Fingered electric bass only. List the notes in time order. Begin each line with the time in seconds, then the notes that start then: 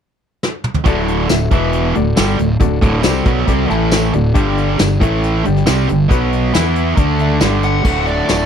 0.86 D1
1.31 D1
1.52 E1
1.97 D1
2.18 G1
2.40 D1
2.60 D1
2.82 D1
3.06 C2
3.26 B1
3.48 C2
3.71 A1
4.14 D1
4.36 G1
4.80 G1
5.02 A1
5.47 G1
5.68 C2
5.90 G1
6.11 B1
6.56 E2
6.98 D2
7.43 G1
7.85 D1
8.30 D1